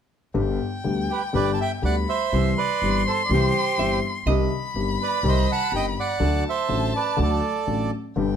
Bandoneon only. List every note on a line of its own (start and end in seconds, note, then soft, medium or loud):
1.11 1.21 G4 medium
1.11 1.23 B4 medium
1.35 1.52 B4 medium
1.35 1.52 D5 medium
1.54 1.59 A5 medium
1.61 1.71 E5 medium
1.61 1.72 G5 medium
1.85 1.96 D5 medium
1.85 1.96 F#5 medium
2.09 2.54 C5 medium
2.09 2.54 E5 medium
2.58 3.03 B4 medium
2.58 3.03 D5 medium
3.06 3.23 A4 medium
3.06 3.22 C5 medium
3.25 3.31 D5 soft
3.33 4.00 G4 medium
3.33 4.00 C5 medium
5.02 5.23 B4 medium
5.02 5.26 D5 medium
5.28 5.49 C5 medium
5.28 5.51 D#5 medium
5.52 5.72 F#5 medium
5.52 5.73 A5 medium
5.75 5.86 D#5 medium
5.75 5.85 G5 medium
6.00 6.44 D5 medium
6.00 6.44 F#5 medium
6.49 6.93 C5 medium
6.49 6.93 E5 medium
6.96 7.18 B4 medium
6.96 7.20 D5 medium
7.22 7.91 A4 medium
7.22 7.90 D5 medium